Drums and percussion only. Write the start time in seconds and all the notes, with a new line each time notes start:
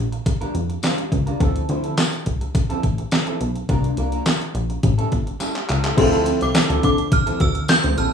0.12 closed hi-hat
0.26 kick, closed hi-hat
0.41 closed hi-hat
0.55 closed hi-hat
0.70 closed hi-hat
0.83 snare, clap, closed hi-hat, tambourine
0.98 closed hi-hat
1.12 kick, closed hi-hat
1.27 closed hi-hat
1.40 kick, closed hi-hat
1.56 closed hi-hat
1.69 closed hi-hat
1.84 closed hi-hat
1.97 snare, clap, closed hi-hat, tambourine
2.13 closed hi-hat
2.26 kick, closed hi-hat
2.41 closed hi-hat
2.55 kick, closed hi-hat
2.70 closed hi-hat
2.83 kick, closed hi-hat
2.98 closed hi-hat
3.11 snare, clap, closed hi-hat, tambourine
3.27 closed hi-hat
3.41 closed hi-hat
3.56 closed hi-hat
3.69 kick, closed hi-hat
3.84 closed hi-hat
3.97 closed hi-hat
4.12 closed hi-hat
4.26 snare, clap, closed hi-hat, tambourine
4.42 closed hi-hat
4.55 closed hi-hat
4.70 closed hi-hat
4.83 kick, closed hi-hat
4.99 closed hi-hat
5.12 kick, closed hi-hat
5.27 closed hi-hat
5.40 clap, closed hi-hat, tambourine
5.55 clap, closed hi-hat
5.69 clap, closed hi-hat
5.84 clap, closed hi-hat
5.98 kick, closed hi-hat, crash
6.13 closed hi-hat
6.26 closed hi-hat
6.41 closed hi-hat
6.55 snare, clap, closed hi-hat, tambourine
6.70 closed hi-hat
6.83 kick, closed hi-hat
6.98 closed hi-hat
7.12 kick, closed hi-hat
7.27 closed hi-hat
7.40 kick, closed hi-hat
7.55 closed hi-hat
7.68 snare, clap, closed hi-hat, tambourine
7.84 closed hi-hat
7.98 closed hi-hat